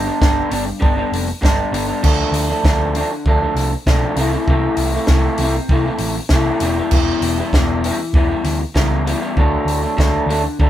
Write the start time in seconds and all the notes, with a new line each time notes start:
Already playing: G2 D3
0.05 G3 B3 D4
0.21 G1 G2 D3 G3 B3 D4, kick, snare
0.50 G1 D3 G3 B3 D4, open hi-hat
0.66 muted clean electric guitar stroke
0.79 G1 D3 G3 B3 D4, kick
0.96 G3 B3 D4
1.12 F1, open hi-hat
1.28 muted clean electric guitar stroke
1.41 G1 G2 D3 G3 B3 D4, kick, snare
1.72 G1 D3 G3 B3 D4, open hi-hat
1.87 G3 B3 D4
2.03 D2 D3 F3 A3 D4, kick, crash
2.31 D2, open hi-hat
2.50 F3 A3 D4
2.64 D2 D3 F3 A3 D4, kick, snare
2.95 D3 F3 A3 D4, open hi-hat
3.13 muted clean electric guitar stroke
3.26 D2 D3 F3 A3 D4, kick
3.42 F3 A3 D4
3.55 C2, snare, open hi-hat
3.73 muted clean electric guitar stroke
3.86 B1 D3 F3 A3 D4, kick, snare
4.16 C2 C3 E3 A3 E4, open hi-hat
4.32 E3 A3 E4
4.47 C2 C3 E3 A3 E4, kick
4.77 C2, open hi-hat
4.95 E3 A3 E4
5.07 C2 C3 E3 A3 E4, kick, snare
5.38 C2 C3, open hi-hat
5.42 E3 A3 E4
5.57 muted clean electric guitar stroke
5.69 C2 C3 E3 A3 E4, kick
5.86 E3 A3 E4
5.99 A1, open hi-hat
6.18 muted clean electric guitar stroke
6.29 C2 C3 E3, kick, snare
6.34 A3 E4
6.60 E1 E3 G3 B3 E4, open hi-hat
6.79 G3 B3 E4
6.91 E1 E3 G3 B3 E4, kick, crash
7.21 E1, open hi-hat
7.39 G3 B3 E4
7.53 E1 E3 G3 B3 E4, kick, snare
7.84 E3 G3 B3 E4, open hi-hat
7.99 muted clean electric guitar stroke
8.13 E1 E3 G3 B3, kick
8.17 E4
8.30 G3 B3 E4
8.44 D2, snare, open hi-hat
8.61 muted clean electric guitar stroke
8.74 C#2 E3 G3 B3 E4, kick, snare
9.06 E3 G3 B3 E4, open hi-hat
9.21 G3 B3 E4
9.37 D2 D3 F#3 A3 D4, kick
9.65 D2, open hi-hat
9.82 F#3 A3 D4
9.97 D2 D3 F#3 A3 D4, kick, snare
10.26 D2 D3 F#3 A3
10.30 D4, open hi-hat
10.44 muted clean electric guitar stroke
10.59 D2 D3 F#3 A3 D4, kick